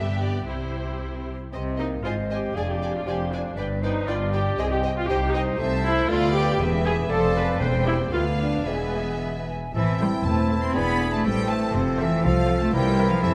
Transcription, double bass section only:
Already playing: G1
0.48 C2
1.52 C2
2.04 G#1
2.55 F1
3.06 F1
3.56 G1
4.07 G1
4.58 C2
5.09 C2
5.59 C2
6.10 D2
6.60 E1
7.10 F1
7.60 E1
8.12 D2
8.66 E1
9.74 A1
10.25 E1
10.75 E1
11.25 A1
11.74 F1
12.24 C2
12.74 C2
13.23 F2

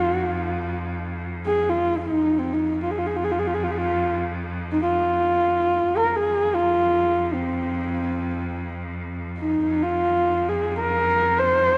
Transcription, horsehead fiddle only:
0.00 F4
0.14 F#4
0.28 F4
1.46 G#4
1.69 F4
1.97 D#4
2.38 C4
2.53 D#4
2.83 F4
2.91 G#4
2.98 F4
3.06 G#4
3.16 F4
3.24 G#4
3.31 F4
3.39 G#4
3.47 F4
3.54 G#4
3.64 F4
3.71 G#4
3.78 F4
4.71 D#4
4.83 F4
5.97 A#4
6.08 A#4
6.16 G#4
6.56 F4
7.33 C4
9.39 D#4
9.83 F4
10.49 G#4
10.79 A#4
11.39 C5

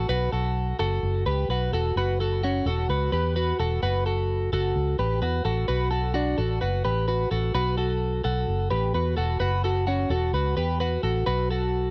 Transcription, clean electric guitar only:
0.09 F#4 B4
0.32 F#4 A4
0.79 F#4 A4
1.26 G4 B4
1.50 F#4 B4
1.73 F#4 A4
1.97 F#4 B4
2.20 F#4 A4
2.43 C#4 F#4
2.66 F#4 A4
2.90 F#4 B4
3.12 G4 B4
3.36 F#4 B4
3.60 F#4 A4
3.83 F#4 B4
4.06 F#4 A4
4.53 F#4 A4
4.99 G4 B4
5.22 F#4 B4
5.45 F#4 A4
5.68 F#4 B4
5.91 F#4 A4
6.14 D4 F#4
6.38 F#4 A4
6.61 F#4 B4
6.85 G4 B4
7.08 F#4 B4
7.31 F#4 A4
7.55 F#4 B4
7.78 F#4 A4
8.24 F#4 A4
8.71 G4 B4
8.94 F#4 B4
9.17 F#4 A4
9.40 F#4 B4
9.64 F#4 A4
9.87 C#4 F#4
10.11 F#4 A4
10.34 F#4 B4
10.57 G4 B4
10.80 F#4 B4
11.03 F#4 A4
11.26 F#4 B4
11.51 F#4 A4

